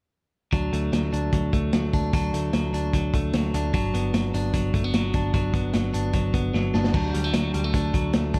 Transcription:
0.53 0.69 D2 medium
0.53 0.92 F#3 medium
0.53 1.12 D4 medium
0.53 kick medium
0.53 closed hi-hat medium
0.73 0.89 D2 medium
0.73 1.52 A3 medium
0.73 closed hi-hat medium
0.92 1.09 D2 medium
0.92 1.33 F#3 medium
0.92 snare medium
0.92 closed hi-hat medium
1.13 1.29 D2 medium
1.13 1.93 D4 medium
1.13 closed hi-hat medium
1.33 1.49 D2 medium
1.33 1.73 F#3 soft
1.33 kick medium
1.33 closed hi-hat medium
1.53 1.70 D2 medium
1.53 2.33 A3 medium
1.53 kick medium
1.53 closed hi-hat medium
1.73 1.90 D2 medium
1.73 2.13 F#3 medium
1.73 snare medium
1.73 closed hi-hat medium
1.93 2.10 D2 medium
1.93 2.14 D4 medium
1.93 kick medium
1.93 closed hi-hat medium
2.13 2.30 D2 medium
2.13 2.53 F#3 medium
2.13 2.73 D4 medium
2.13 kick medium
2.13 closed hi-hat medium
2.33 2.50 D2 medium
2.33 3.13 A3 medium
2.33 closed hi-hat medium
2.53 2.70 D2 medium
2.53 2.94 F#3 medium
2.53 snare medium
2.53 closed hi-hat medium
2.73 2.90 D2 medium
2.73 3.54 D4 medium
2.73 closed hi-hat medium
2.93 3.10 D2 medium
2.93 3.34 F#3 medium
2.93 kick medium
2.93 closed hi-hat medium
3.14 3.30 D2 medium
3.14 3.78 A3 medium
3.14 kick medium
3.14 closed hi-hat medium
3.33 3.50 D2 medium
3.33 3.73 F#3 medium
3.33 snare loud
3.33 closed hi-hat medium
3.54 3.70 D2 medium
3.54 3.74 D4 medium
3.54 closed hi-hat medium
3.74 3.90 G1 medium
3.74 4.14 F#3 medium
3.74 4.34 D4 medium
3.74 kick medium
3.74 closed hi-hat medium
3.94 4.10 G1 medium
3.94 4.74 B3 medium
3.94 closed hi-hat medium
4.14 4.30 G1 medium
4.14 4.53 F#3 medium
4.14 snare medium
4.14 closed hi-hat medium
4.34 4.50 G1 medium
4.34 5.14 D4 medium
4.34 closed hi-hat medium
4.54 4.70 G1 medium
4.54 4.94 F#3 medium
4.54 kick medium
4.54 closed hi-hat medium
4.74 4.90 G1 medium
4.74 4.84 A3 medium
4.74 kick medium
4.74 closed hi-hat medium
4.84 5.52 B3 soft
4.94 5.10 G1 medium
4.94 5.34 F#3 medium
4.94 snare loud
4.94 closed hi-hat medium
5.14 5.31 G1 medium
5.14 5.34 D4 medium
5.14 kick medium
5.14 closed hi-hat medium
5.34 5.50 G1 medium
5.34 5.73 F#3 medium
5.34 5.93 D4 medium
5.34 kick medium
5.34 closed hi-hat medium
5.54 5.70 G1 medium
5.54 6.33 B3 medium
5.54 kick medium
5.54 closed hi-hat medium
5.74 5.91 G1 medium
5.74 6.14 F#3 medium
5.74 snare medium
5.74 closed hi-hat medium
5.94 6.10 G1 medium
5.94 6.74 D4 medium
5.94 closed hi-hat medium
6.13 6.30 G1 medium
6.13 6.54 F#3 medium
6.13 kick medium
6.13 closed hi-hat medium
6.34 6.51 G1 medium
6.34 6.98 B3 medium
6.34 kick medium
6.34 closed hi-hat medium
6.54 6.71 G1 medium
6.54 6.94 F#3 medium
6.54 snare soft
6.74 6.91 G1 medium
6.74 6.94 D4 medium
6.74 snare medium
6.84 snare medium
6.94 7.10 D2 medium
6.94 7.33 F#3 medium
6.94 7.73 D4 medium
6.94 kick medium
6.94 crash medium
7.14 7.31 D2 medium
7.14 7.24 G3 medium
7.14 closed hi-hat medium
7.24 7.54 A3 soft
7.33 7.51 D2 medium
7.33 7.94 F#3 medium
7.33 snare medium
7.33 closed hi-hat medium
7.54 7.71 D2 medium
7.54 7.64 G3 medium
7.54 closed hi-hat medium
7.64 8.13 A3 soft
7.74 7.91 D2 medium
7.74 8.34 D4 medium
7.74 kick medium
7.74 closed hi-hat medium
7.94 8.10 D2 medium
7.94 8.39 F#3 medium
7.94 kick medium
7.94 closed hi-hat medium
8.13 8.31 D2 medium
8.13 8.39 A3 medium
8.13 snare loud
8.13 closed hi-hat medium
8.34 8.39 D2 medium
8.34 8.39 D4 medium
8.34 kick medium
8.34 open hi-hat medium

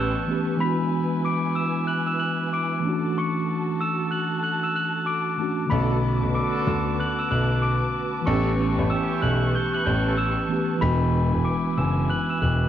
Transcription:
0.00 0.13 A1 medium
0.00 0.22 E3 medium
0.00 0.23 A3 medium
0.00 0.24 B3 medium
0.00 0.29 C#4 medium
0.00 0.26 G4 medium
0.00 0.58 G4 medium
0.00 2.80 B4 medium
0.00 0.56 A5 medium
0.00 0.58 C#6 medium
0.00 0.26 E6 medium
0.00 0.27 E7 medium
0.27 0.55 E3 medium
0.27 0.60 A3 soft
0.27 0.59 B3 soft
0.27 0.61 C#4 soft
0.31 0.62 G4 medium
0.56 2.78 E3 medium
0.56 2.79 G#3 medium
0.56 2.81 E4 medium
0.56 2.82 G#5 medium
0.56 1.20 B5 loud
0.61 2.80 B3 medium
0.61 2.81 D4 medium
0.61 1.21 B6 medium
0.65 2.82 F#4 medium
1.25 1.53 D6 medium
1.25 1.54 D7 medium
1.55 1.85 E6 medium
1.55 1.85 E7 medium
1.87 2.05 F#6 medium
1.87 2.06 F#7 medium
2.07 2.18 E6 medium
2.07 2.19 E7 medium
2.19 2.48 F#6 medium
2.19 2.49 F#7 medium
2.53 2.81 D6 medium
2.53 2.82 D7 medium
2.80 5.33 E3 medium
2.80 5.34 A3 medium
2.84 5.35 C#4 medium
2.84 5.37 D4 medium
2.84 5.69 F#4 medium
2.84 5.69 A4 medium
2.84 5.69 A5 medium
2.89 5.38 F#4 medium
3.18 3.77 C#6 medium
3.18 3.77 C#7 medium
3.81 4.09 E6 medium
3.81 4.09 E7 medium
4.11 4.40 F#6 medium
4.11 4.40 F#7 medium
4.43 4.61 F#6 medium
4.43 4.61 F#7 medium
4.63 4.74 E6 medium
4.63 4.75 E7 medium
4.75 5.04 F#6 medium
4.75 5.05 F#7 medium
5.06 5.35 D6 medium
5.06 5.36 D7 medium
5.38 5.70 E3 medium
5.38 5.67 A3 soft
5.38 5.71 C#4 soft
5.38 5.72 D4 soft
5.42 5.72 F#4 medium
5.66 8.20 D3 medium
5.66 8.21 A3 medium
5.66 6.30 B5 loud
5.70 6.19 B1 loud
5.70 8.22 B3 medium
5.70 8.23 C#4 medium
5.70 5.97 D4 loud
5.70 8.24 F#4 medium
5.70 5.97 F#4 loud
5.70 5.97 A4 loud
5.70 12.69 B4 medium
5.70 10.78 A5 medium
5.70 8.24 D6 medium
5.70 6.31 B6 medium
5.75 8.24 F#4 medium
6.23 6.34 B1 medium
6.23 6.34 D4 medium
6.23 6.33 F#4 medium
6.23 6.34 B4 medium
6.34 7.27 D4 loud
6.34 7.27 F#4 loud
6.34 7.27 A4 loud
6.34 6.63 D6 medium
6.34 6.64 D7 medium
6.67 6.96 D2 medium
6.67 6.96 E6 medium
6.67 6.97 E7 medium
7.00 7.17 F#6 medium
7.00 7.17 F#7 medium
7.19 7.30 E6 medium
7.19 7.30 E7 medium
7.31 7.79 B1 medium
7.31 7.60 F#6 medium
7.31 7.60 F#7 medium
7.62 7.91 D6 medium
7.62 7.92 D7 medium
8.22 10.43 E3 medium
8.22 10.45 A3 medium
8.26 8.74 A1 loud
8.26 10.46 B3 medium
8.26 8.35 C4 soft
8.26 8.52 C#4 loud
8.26 8.52 E4 loud
8.26 10.79 G4 medium
8.26 8.52 A4 loud
8.26 8.86 C#6 medium
8.26 10.79 C#6 medium
8.26 8.87 C#7 medium
8.30 10.48 G4 medium
8.34 10.50 C#4 medium
8.77 8.90 A1 medium
8.77 8.87 E4 medium
8.77 8.87 G4 medium
8.77 8.87 B4 medium
8.90 9.51 C#4 loud
8.90 9.51 E4 loud
8.90 9.51 G4 loud
8.90 9.19 E6 medium
8.90 9.19 E7 medium
9.22 9.52 B1 medium
9.22 9.51 F#6 medium
9.22 9.51 F#7 medium
9.55 9.72 G6 medium
9.55 9.73 G7 medium
9.72 9.83 E4 medium
9.72 9.83 G4 medium
9.72 9.83 B4 medium
9.72 9.85 F#6 medium
9.72 9.85 F#7 medium
9.86 10.34 A1 medium
9.86 10.15 G6 medium
9.86 10.15 G7 medium
10.07 10.14 C#4 medium
10.07 10.14 E4 medium
10.07 10.14 A4 medium
10.17 10.46 E6 medium
10.17 10.47 E7 medium
10.48 10.77 E3 medium
10.48 10.82 A3 soft
10.48 10.81 B3 soft
10.48 10.83 C#4 soft
10.52 10.83 G4 medium
10.78 12.69 E3 medium
10.78 12.69 G#3 medium
10.78 11.41 B5 loud
10.78 11.42 B6 medium
10.82 11.30 E1 loud
10.82 12.69 B3 medium
10.82 12.69 D4 medium
10.82 12.69 E4 medium
10.82 12.69 G#5 medium
10.86 12.69 F#4 medium
11.34 11.45 E1 loud
11.44 11.74 D6 medium
11.44 11.74 D7 medium
11.77 12.07 F#1 medium
11.77 12.06 E6 medium
11.77 12.07 E7 medium
12.10 12.27 F#6 medium
12.10 12.28 F#7 medium
12.29 12.40 E6 medium
12.29 12.41 E7 medium
12.42 12.69 E1 loud
12.42 12.69 F#6 medium
12.42 12.69 F#7 medium

